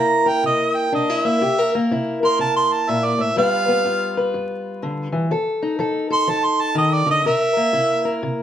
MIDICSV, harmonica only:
0, 0, Header, 1, 2, 480
1, 0, Start_track
1, 0, Tempo, 487013
1, 1393, Time_signature, 4, 2, 24, 8
1, 8306, End_track
2, 0, Start_track
2, 0, Title_t, "Harmonica"
2, 0, Program_c, 0, 22
2, 0, Note_on_c, 0, 82, 88
2, 276, Note_on_c, 0, 79, 88
2, 291, Note_off_c, 0, 82, 0
2, 435, Note_off_c, 0, 79, 0
2, 450, Note_on_c, 0, 75, 93
2, 757, Note_on_c, 0, 79, 82
2, 772, Note_off_c, 0, 75, 0
2, 916, Note_off_c, 0, 79, 0
2, 932, Note_on_c, 0, 75, 85
2, 1240, Note_on_c, 0, 76, 104
2, 1255, Note_off_c, 0, 75, 0
2, 1697, Note_off_c, 0, 76, 0
2, 2216, Note_on_c, 0, 84, 103
2, 2362, Note_off_c, 0, 84, 0
2, 2370, Note_on_c, 0, 81, 96
2, 2519, Note_off_c, 0, 81, 0
2, 2526, Note_on_c, 0, 84, 87
2, 2688, Note_on_c, 0, 81, 85
2, 2703, Note_off_c, 0, 84, 0
2, 2858, Note_on_c, 0, 76, 89
2, 2872, Note_off_c, 0, 81, 0
2, 3006, Note_on_c, 0, 74, 81
2, 3021, Note_off_c, 0, 76, 0
2, 3178, Note_on_c, 0, 76, 88
2, 3193, Note_off_c, 0, 74, 0
2, 3324, Note_off_c, 0, 76, 0
2, 3333, Note_on_c, 0, 77, 105
2, 4258, Note_off_c, 0, 77, 0
2, 6041, Note_on_c, 0, 84, 105
2, 6205, Note_on_c, 0, 81, 99
2, 6220, Note_off_c, 0, 84, 0
2, 6351, Note_on_c, 0, 84, 97
2, 6366, Note_off_c, 0, 81, 0
2, 6515, Note_on_c, 0, 81, 89
2, 6530, Note_off_c, 0, 84, 0
2, 6670, Note_off_c, 0, 81, 0
2, 6683, Note_on_c, 0, 75, 85
2, 6838, Note_on_c, 0, 74, 87
2, 6853, Note_off_c, 0, 75, 0
2, 6991, Note_off_c, 0, 74, 0
2, 7007, Note_on_c, 0, 75, 96
2, 7156, Note_off_c, 0, 75, 0
2, 7166, Note_on_c, 0, 76, 107
2, 8087, Note_off_c, 0, 76, 0
2, 8306, End_track
0, 0, End_of_file